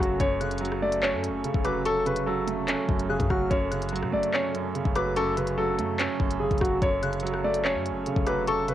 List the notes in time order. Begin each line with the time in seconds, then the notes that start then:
Already playing: F#2 C#3 F#3 A3 C#4 A4
0.00 F#1 F#3 F#4, closed hi-hat
0.20 F#1 F#2 A4 C#5, kick, closed hi-hat
0.40 C#3 F#6, closed hi-hat
0.51 closed hi-hat
0.58 F#3, closed hi-hat
0.65 closed hi-hat
0.72 cross-stick
0.82 A3 D5
0.92 closed hi-hat
1.03 C#4 C#5, clap
1.13 F#2
1.24 closed hi-hat
1.29 F#1
1.44 C#3, closed hi-hat
1.54 F1, kick
1.65 F#3 B4 D6, cross-stick, closed hi-hat
1.85 A4 C#6, closed hi-hat
2.06 C#3 B4, closed hi-hat
2.16 closed hi-hat
2.26 F#3 A4
2.47 A3, closed hi-hat
2.68 C#4, clap, closed hi-hat
2.88 F#1 F#2, kick
2.99 closed hi-hat
3.09 C#3 G#4 F#6
3.20 F#2, kick, closed hi-hat
3.30 F#1 F#3 F#4 F6, kick, cross-stick
3.50 F#1 F#2 C#5, kick, closed hi-hat
3.71 C#3 F#6, closed hi-hat
3.82 closed hi-hat
3.89 F#3, closed hi-hat
3.96 closed hi-hat
4.03 C#3, cross-stick
4.12 F#1 A3 D5
4.23 closed hi-hat
4.34 C#4 C#5, clap
4.54 F#2, closed hi-hat
4.75 C#3, closed hi-hat
4.85 F#1, kick
4.95 F#3 B4 D6, cross-stick, closed hi-hat
5.16 F#2 A4 C#6, closed hi-hat
5.37 C#3 B4, closed hi-hat
5.47 closed hi-hat
5.58 F#3 A4
5.79 F#2 A3, closed hi-hat
5.99 C#4, clap, closed hi-hat
6.20 F#1 F#2, kick
6.30 closed hi-hat
6.40 C#3 G#4
6.51 F#1, kick, closed hi-hat
6.58 F#1 F#3 F#4, kick, cross-stick, closed hi-hat
6.65 closed hi-hat
6.82 F#1 F#2 F#3 A3 C#4 C#5, kick, closed hi-hat
7.03 C#3 F#6, closed hi-hat
7.13 closed hi-hat
7.20 F#3, closed hi-hat
7.27 closed hi-hat
7.34 cross-stick
7.44 A3 D5
7.54 closed hi-hat
7.65 C#4 C#5, clap
7.75 F#2
7.86 closed hi-hat
7.91 F#1
8.06 C#3, closed hi-hat
8.16 F1, kick
8.27 F#3 B4 D6, cross-stick, closed hi-hat
8.47 A4 C#6, closed hi-hat
8.68 C#3 B4, closed hi-hat